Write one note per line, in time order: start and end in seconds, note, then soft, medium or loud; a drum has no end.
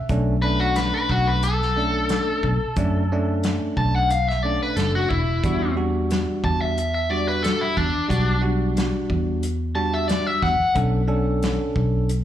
0.09 0.91 B1 loud
0.09 0.35 A3 medium
0.09 0.36 C#4 medium
0.09 0.36 D4 medium
0.09 kick loud
0.09 closed hi-hat medium
0.42 1.45 A3 medium
0.42 1.45 C#4 medium
0.42 1.45 D4 medium
0.42 0.60 B4 loud
0.60 0.75 F#4 medium
0.76 0.93 B4 medium
0.76 snare loud
0.76 closed hi-hat medium
0.95 1.10 B4 medium
1.09 2.18 B1 medium
1.09 1.27 F#4 medium
1.09 kick medium
1.27 1.42 B4 medium
1.43 3.39 A4 medium
1.43 closed hi-hat medium
1.62 snare soft
1.76 2.53 A3 medium
1.76 2.53 C#4 medium
1.76 2.54 D4 medium
2.09 snare loud
2.09 closed hi-hat medium
2.43 2.57 B1 medium
2.43 kick medium
2.76 3.58 F#2 medium
2.76 3.03 A3 medium
2.76 3.03 C#4 medium
2.76 3.03 D4 medium
2.76 kick loud
2.76 closed hi-hat medium
3.12 4.13 A3 medium
3.12 4.13 C#4 medium
3.12 4.13 D4 loud
3.43 snare loud
3.43 closed hi-hat medium
3.77 4.58 B1 medium
3.77 3.94 A5 medium
3.77 kick medium
3.96 4.10 F#5 medium
4.10 4.28 F5 medium
4.10 closed hi-hat medium
4.29 4.43 E5 medium
4.29 snare soft
4.43 5.21 A3 medium
4.43 5.21 C#4 medium
4.43 5.21 D4 medium
4.43 4.60 D5 medium
4.63 4.76 B4 medium
4.76 5.06 F#1 medium
4.76 4.94 A4 medium
4.76 snare loud
4.76 closed hi-hat medium
4.95 5.09 F#4 medium
5.09 5.40 E1 medium
5.09 5.74 E4 medium
5.09 kick medium
5.43 6.25 E2 loud
5.43 5.69 G3 medium
5.43 5.70 D4 medium
5.43 5.70 F#4 medium
5.43 kick loud
5.43 closed hi-hat medium
5.76 6.78 G3 medium
5.76 6.78 D4 medium
5.76 6.79 F#4 medium
6.10 snare loud
6.10 closed hi-hat medium
6.43 7.52 E2 medium
6.43 6.61 A5 medium
6.43 kick medium
6.61 6.76 E5 medium
6.78 6.93 E5 medium
6.78 closed hi-hat medium
6.94 7.09 E5 medium
7.10 7.87 G3 medium
7.10 7.87 D4 medium
7.10 7.87 F#4 medium
7.10 7.27 D5 medium
7.28 7.43 B4 medium
7.43 7.60 A4 medium
7.43 snare loud
7.43 closed hi-hat medium
7.61 7.76 E4 medium
7.77 7.91 E2 medium
7.77 8.41 D4 medium
7.77 kick medium
8.08 8.92 B1 medium
8.08 8.35 G3 medium
8.08 8.35 D4 medium
8.08 8.35 F#4 medium
8.08 kick loud
8.08 closed hi-hat medium
8.42 9.44 G3 medium
8.42 9.44 D4 medium
8.42 9.45 F#4 medium
8.77 snare loud
8.77 closed hi-hat medium
9.10 10.19 E2 medium
9.10 kick medium
9.43 closed hi-hat medium
9.75 10.53 G3 medium
9.75 10.53 D4 medium
9.75 10.53 F#4 medium
9.75 9.93 A5 medium
9.94 10.08 E5 medium
10.08 10.27 D5 medium
10.08 snare loud
10.08 closed hi-hat medium
10.27 10.42 E5 medium
10.42 10.57 E2 medium
10.42 10.75 F#5 medium
10.42 kick medium
10.42 snare soft
10.60 muted fingered electric bass stroke soft
10.75 11.58 B1 loud
10.75 11.01 C#4 medium
10.75 11.02 D4 medium
10.75 11.02 A4 medium
10.75 kick loud
10.75 closed hi-hat medium
11.08 12.10 C#4 medium
11.08 12.10 D4 medium
11.08 12.11 A4 medium
11.42 snare loud
11.42 closed hi-hat medium
11.76 12.24 B1 medium
11.76 kick medium
12.09 closed hi-hat medium